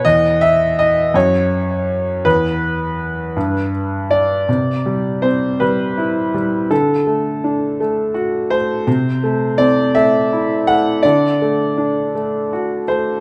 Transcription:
X:1
M:6/8
L:1/8
Q:3/8=54
K:B
V:1 name="Grand piano"
d e d c3 | B4 z =d- | [K:Clyd] d2 c B3 | A4- A c- |
c2 d e2 f | d4- d c |]
V:2 name="Grand piano"
E,,3 F,,3 | E,,3 =G,,3 | [K:Clyd] C, G, C G, E G, | D, A, D A, F A, |
C, A, C A, E A, | D, A, D A, F A, |]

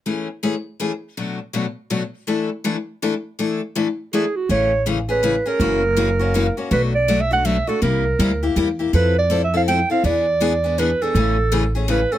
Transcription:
X:1
M:3/4
L:1/16
Q:"Swing" 1/4=162
K:A
V:1 name="Clarinet"
z12 | z12 | z12 | z8 G2 F2 |
c4 z2 B4 _B2- | _B8- B2 z2 | B2 d2- (3d2 e2 f2 e2 A2 | _B6- B z4 z |
B2 d2- (3d2 e2 =f2 =g2 f2 | d8 B2 A2- | A6 z2 B2 A2 |]
V:2 name="Steel-string acoustic guitar"
[E,A,CG]2 z2 [E,A,CG] z3 [E,A,CG] z3 | [B,,F,A,DF]2 z2 [B,,F,A,DF] z3 [B,,F,A,DF] z3 | [E,A,DEA]2 z2 [E,A,DEA] z3 [E,A,DEA] z3 | [E,A,DEA]2 z2 [E,A,DEA] z3 [E,A,DEA] z3 |
[C,E,A,CG]2 z2 [C,E,A,CG] z [A,CG]2 [C,E,A,CG] z [A,CG]2 | [C,E,^A,CF]2 z2 [C,E,A,CF] z [A,CF]2 [C,E,A,CF] z [A,CF]2 | [B,,F,A,DF]2 z2 [B,,F,A,DF] z [A,DF]2 [B,,F,A,DF] z [A,DF]2 | [=C,=G,_B,E=G]2 z2 [C,G,B,EG] z [B,EG]2 [C,G,B,EG] z [B,EG]2 |
[=F,=CEA]2 z2 [F,CEA] z [CEA]2 [F,CEA] z [CEA]2 | [E,B,DG]2 z2 [E,B,DG] z [B,DG]2 [E,B,DG] z [B,DG]2 | [C,E,A,CG]2 z2 [C,E,A,CG] z [A,CG]2 [C,E,A,CG] z [A,CG]2 |]
V:3 name="Upright bass" clef=bass
z12 | z12 | z12 | z12 |
A,,,12 | F,,,12 | B,,,12 | =C,,4 D,,4 E,,4 |
=F,,12 | E,,12 | A,,,12 |]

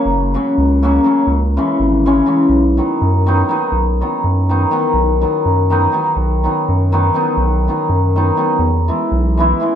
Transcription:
X:1
M:5/8
L:1/8
Q:1/4=123
K:B
V:1 name="Hammered dulcimer" clef=bass
z [C,F,A,C] z [C,F,A,C] [C,F,A,C] | z [C,E,G,C] z [C,E,G,C] [C,E,G,C] | z [D,F,B,D] z [D,F,B,D] [D,F,B,D] | z [D,F,B,D] z [D,F,B,D] [D,F,B,D] |
z [D,F,B,D] z [D,F,B,D] [D,F,B,D] | z [D,F,B,D] z [D,F,B,D] [D,F,B,D] | z [D,F,B,D] z [D,F,B,D] [D,F,B,D] | z [E,G,B,E] z [E,G,B,E] [E,G,B,E] |]
V:2 name="Analog synth bass" clef=bass
F,,,2 C,,3 | C,,2 G,,,3 | B,,,2 F,,3 | B,,,2 F,,3 |
B,,,2 F,,3 | B,,,2 F,,3 | B,,,2 F,,3 | E,,2 B,,,3 |]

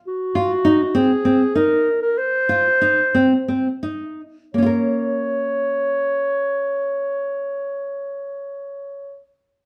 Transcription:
X:1
M:7/8
L:1/16
Q:1/4=83
K:Bbm
V:1 name="Clarinet"
G6 A4 B3 B | c8- c2 z4 | d12- d2- | d12- d2 |]
V:2 name="Nylon-string guitar"
z2 F2 E2 C2 C2 E4 | z2 F2 E2 C2 C2 E4 | [B,DFB]12- [B,DFB]2- | [B,DFB]12- [B,DFB]2 |]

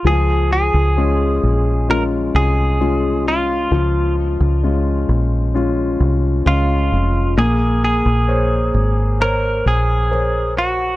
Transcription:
X:1
M:4/4
L:1/16
Q:1/4=66
K:Db
V:1 name="Clean electric guitar"
A2 A6 B2 A4 F2- | F2 z8 z2 F4 | A2 A6 B2 A4 G2 |]
V:2 name="Grand piano"
F,4 [A,DF]4 [A,DF]4 [A,DF]4 | F,4 [A,DF]4 [A,DF]4 [A,DF]4 | B,4 [Bcd]4 [Bcd]4 [Bcd]4 |]
V:3 name="Fingered electric bass" clef=bass
D,,3 D,,3 B,,,4 C,,6 | D,,3 D,,3 B,,,4 C,,2 D,,2 F,,,2 | B,,,3 B,,,3 A,,,4 B,,,6 |]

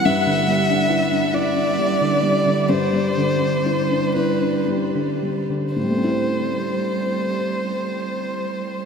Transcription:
X:1
M:6/8
L:1/16
Q:3/8=39
K:Am
V:1 name="Violin"
e6 d6 | c6 B2 z4 | c12 |]
V:2 name="Cello" clef=bass
G,12- | G,8- G,3 z | G,12 |]
V:3 name="Upright piano" clef=bass
G,, D, G, D E D E D G, D, G, D, | G,, G, D, D E D E D G, D, G, D, | [A,,G,A,CEc]12 |]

